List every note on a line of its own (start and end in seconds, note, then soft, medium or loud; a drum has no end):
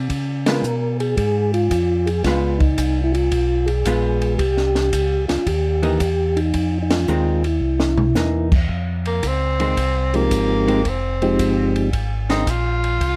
0.09 0.62 C#3 medium
0.09 kick soft
0.09 ride medium
0.46 0.63 G#3 medium
0.46 0.63 B3 medium
0.46 0.63 F4 medium
0.46 0.97 A#4 medium
0.46 snare medium
0.46 ride medium
0.63 1.16 B2 medium
0.63 hi-hat pedal medium
1.00 1.16 G#4 medium
1.00 ride soft
1.17 1.69 G#2 medium
1.17 1.52 G#4 loud
1.17 kick soft
1.17 ride medium
1.54 2.09 F4 loud
1.54 ride soft
1.70 2.23 F2 medium
1.70 kick soft
1.70 hi-hat pedal soft
1.70 ride medium
2.06 2.23 G#4 medium
2.06 ride soft
2.24 2.77 C#2 medium
2.24 2.58 G#3 medium
2.24 2.59 B3 medium
2.24 2.58 F4 medium
2.24 2.59 F4 medium
2.24 kick soft
2.24 snare soft
2.24 ride medium
2.59 3.01 D#4 medium
2.59 kick soft
2.59 ride soft
2.78 3.30 C2 medium
2.78 kick soft
2.78 hi-hat pedal medium
2.78 ride medium
3.04 3.14 E4 medium
3.12 3.69 F4 medium
3.12 ride soft
3.31 3.84 B1 medium
3.31 kick soft
3.31 ride medium
3.66 4.34 G#4 medium
3.66 ride soft
3.85 4.38 A#1 medium
3.85 4.40 G#3 medium
3.85 4.41 B3 medium
3.85 4.40 F4 medium
3.85 kick soft
3.85 hi-hat pedal soft
3.85 ride medium
4.22 ride soft
4.38 4.91 C2 medium
4.38 5.25 G4 medium
4.38 kick soft
4.38 ride medium
4.57 snare soft
4.75 snare soft
4.75 ride soft
4.93 5.27 C#2 medium
4.93 kick soft
4.93 hi-hat pedal soft
4.93 ride medium
5.28 5.38 C#2 soft
5.28 5.47 F4 medium
5.28 snare soft
5.28 ride soft
5.46 5.99 D#2 medium
5.46 6.40 G4 medium
5.46 kick soft
5.46 ride medium
5.83 5.99 E3 medium
5.83 5.99 A#3 medium
5.83 5.99 D#4 medium
5.83 ride soft
6.00 6.53 E2 medium
6.00 kick soft
6.00 hi-hat pedal medium
6.00 ride medium
6.36 6.78 D#4 medium
6.36 ride soft
6.54 7.06 F2 medium
6.54 kick soft
6.54 ride medium
6.82 6.92 D#4 medium
6.91 7.46 F4 medium
6.91 snare medium
6.91 ride medium
7.08 7.60 D#2 medium
7.08 7.41 D#3 medium
7.08 7.42 G#3 medium
7.08 7.42 C4 medium
7.08 hi-hat pedal soft
7.44 8.49 E4 medium
7.44 ride soft
7.61 8.14 C2 medium
7.80 snare medium
7.98 floor tom medium
8.14 8.68 E2 medium
8.14 8.49 E3 medium
8.14 8.49 A#3 medium
8.14 8.50 D#4 medium
8.14 snare soft
8.14 hi-hat pedal medium
8.52 kick medium
8.52 crash medium
8.69 9.22 F2 medium
8.69 kick soft
9.05 9.29 A#3 medium
9.05 ride soft
9.23 9.76 C#2 medium
9.23 kick soft
9.23 hi-hat pedal medium
9.23 ride medium
9.27 10.17 C4 medium
9.60 9.76 D#3 medium
9.60 9.76 G#3 medium
9.60 9.77 C4 medium
9.60 ride soft
9.77 10.30 C2 medium
9.77 kick soft
9.77 ride medium
10.14 10.82 F3 medium
10.14 10.82 G#3 medium
10.14 10.90 A#3 medium
10.14 10.82 C4 medium
10.14 10.82 D#4 soft
10.14 10.82 G4 medium
10.14 ride soft
10.31 10.84 G#1 medium
10.31 kick soft
10.31 hi-hat pedal soft
10.31 ride medium
10.68 10.84 D#3 medium
10.68 10.84 G#3 medium
10.68 10.84 C4 medium
10.68 ride soft
10.85 11.37 F1 medium
10.85 kick soft
10.85 ride medium
10.89 11.77 C4 medium
11.22 11.90 F3 medium
11.22 11.90 G#3 medium
11.22 11.90 C4 medium
11.22 11.90 D#4 medium
11.22 11.90 G4 medium
11.22 ride soft
11.39 11.91 G1 medium
11.39 kick soft
11.39 hi-hat pedal medium
11.39 ride medium
11.76 ride soft
11.93 12.45 G#1 medium
11.93 kick soft
11.93 ride medium
12.30 12.45 D#3 medium
12.30 12.45 G#3 medium
12.30 12.45 C4 medium
12.30 12.51 D#4 medium
12.30 snare soft
12.30 ride soft
12.47 12.99 A#1 medium
12.47 13.16 F4 medium
12.47 kick soft
12.47 hi-hat pedal soft
12.47 ride medium
12.84 ride soft
13.00 13.16 C2 medium
13.00 kick soft
13.00 ride medium